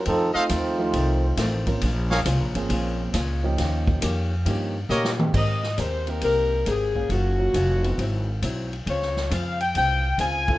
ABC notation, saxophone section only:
X:1
M:4/4
L:1/8
Q:"Swing" 1/4=136
K:Ab
V:1 name="Saxophone section"
z8 | z8 | z8 | e2 c B B2 A2 |
_G6 z2 | d2 f g g2 a2 |]